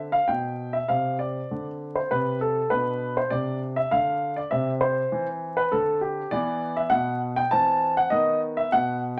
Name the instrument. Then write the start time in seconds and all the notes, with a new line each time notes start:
grand piano
Already playing: D3 C4
0.12 F5
0.28 B2 G5
0.73 E5
0.88 C3 C4 F5
1.19 D5
1.51 D3
1.95 C5
2.11 C3 B4
2.41 A4
2.70 B2 D4 B4
3.17 C5
3.30 C3 D5
3.76 E5
3.91 D3 F5
4.36 D5
4.51 C3 C4 E5
4.81 C5
5.12 E3
5.57 B4
5.72 D3 A4
6.01 G4
6.31 E3 B3 D5
6.76 E5
6.90 B2 F#5
7.36 G5
7.51 E3 C4 A5
7.97 F#5
8.10 D#3 B3 D#5
8.57 E5
8.72 B2 F#5